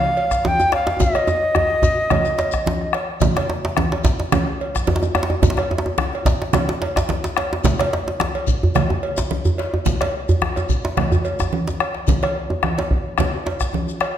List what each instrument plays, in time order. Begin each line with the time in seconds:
Already playing: bansuri F5
0.05 djembe tone
0.17 cowbell, djembe slap
0.31 bombo rim, bombo low, djembe slap, shekere
0.45 bansuri G5, djembe slap, high conga, djembe bass
0.60 djembe tone, shekere
0.72 bansuri F5, bombo rim, cowbell, djembe slap
0.87 djembe slap
1.00 bansuri D#5, bombo rim, bombo low, djembe tone, high conga, low conga, djembe bass, shekere
1.15 bombo rim, cowbell, djembe slap, high conga, djembe tone
1.28 djembe tone, high conga, shekere
1.43 bombo rim
1.55 bombo rim, djembe slap, djembe tone, high conga, djembe bass
1.70 djembe tone
1.82 bombo low, djembe tone, shekere
1.97 bombo rim, djembe slap
2.10 bombo rim, cowbell, djembe slap, high conga, djembe tone, low conga, djembe bass
2.25 djembe tone, shekere
2.38 bombo rim, cowbell, djembe slap, shekere
2.52 bombo rim, bombo low, djembe slap, shekere
2.66 djembe slap, high conga, djembe bass
2.81 bombo rim, djembe slap, djembe tone
2.93 bombo rim, cowbell, djembe slap, high conga
3.09 bombo rim, djembe slap
3.21 bombo low, djembe slap, high conga, low conga, djembe bass, shekere
3.37 bombo rim, cowbell, djembe slap, djembe tone
3.50 djembe slap
3.65 djembe slap
3.77 bombo rim, djembe slap, high conga, djembe bass
3.92 cowbell, djembe slap, high conga, djembe tone
4.04 bombo low, djembe slap, shekere
4.20 djembe slap
4.32 bombo rim, cowbell, djembe slap, high conga, low conga, djembe bass, shekere
4.47 djembe tone
4.61 cowbell, djembe slap
4.75 bombo rim, bombo low, djembe slap, shekere
4.87 djembe slap, high conga, djembe tone, djembe bass
4.96 djembe slap
5.02 djembe tone, shekere
5.15 bombo rim, cowbell, djembe slap, djembe tone
5.23 djembe slap
5.30 djembe tone
5.42 bombo rim, bombo low, djembe slap, djembe tone, high conga, djembe bass, low conga, shekere
5.50 djembe slap
5.57 bombo rim, cowbell, djembe slap, djembe tone
5.70 djembe slap, djembe tone
5.78 djembe slap
5.86 djembe tone
5.98 bombo rim, djembe slap, high conga, djembe bass
6.13 cowbell, high conga, djembe tone
6.25 bombo low, djembe slap, shekere
6.42 djembe slap
6.53 bombo rim, cowbell, djembe slap, high conga, low conga, djembe bass, shekere
6.69 djembe slap, djembe tone
6.82 cowbell, djembe slap
6.96 bombo rim, bombo low, djembe slap, shekere
7.09 djembe slap, high conga, djembe bass
7.24 djembe slap, djembe tone, shekere
7.37 bombo rim, cowbell, djembe slap
7.53 djembe slap
7.64 bombo low, djembe slap, high conga, djembe bass, low conga, shekere
7.79 bombo rim, cowbell, djembe slap, djembe tone
7.92 djembe slap
8.08 djembe slap
8.20 bombo rim, djembe slap, high conga, djembe bass
8.35 cowbell, djembe tone, high conga
8.47 bombo low, djembe slap, shekere
8.63 djembe bass
8.75 bombo rim, cowbell, djembe slap, high conga, low conga, djembe bass, shekere
8.90 djembe tone
9.03 cowbell, djembe slap
9.17 bombo low, djembe slap, shekere
9.31 djembe slap, high conga, djembe bass
9.45 djembe tone, djembe bass, shekere
9.58 cowbell, djembe slap
9.74 djembe tone
9.86 bombo rim, bombo low, djembe slap, high conga, low conga, djembe bass, shekere
10.01 bombo rim, cowbell, djembe slap, high conga, djembe tone
10.14 djembe slap
10.29 djembe bass, shekere
10.42 bombo rim, djembe slap, high conga, djembe bass
10.56 cowbell, djembe slap, djembe tone, shekere
10.69 bombo low, high conga, shekere
10.85 djembe slap
10.97 bombo rim, cowbell, djembe slap, high conga, djembe bass, low conga
11.12 djembe tone, djembe bass, shekere
11.25 bombo rim, cowbell, djembe slap, shekere
11.39 bombo rim, bombo low, djembe slap, djembe tone, shekere
11.53 high conga, djembe bass
11.68 djembe slap, high conga, djembe bass, shekere
11.80 bombo rim, cowbell, djembe slap, high conga
11.94 djembe slap
12.07 bombo rim, bombo low, djembe slap, high conga, djembe bass, low conga, shekere
12.23 bombo rim, cowbell, djembe slap, djembe tone
12.35 djembe slap
12.50 djembe tone
12.63 bombo rim, djembe slap, high conga, djembe bass
12.78 cowbell, djembe slap, djembe tone, high conga
12.90 bombo low, djembe slap
13.18 bombo rim, cowbell, djembe slap, djembe tone, high conga, djembe bass, low conga, shekere
13.33 djembe tone
13.46 cowbell, djembe slap
13.60 bombo rim, bombo low, djembe slap, shekere
13.73 djembe slap, high conga, djembe bass
13.87 djembe tone, shekere
14.01 bombo rim, cowbell, djembe slap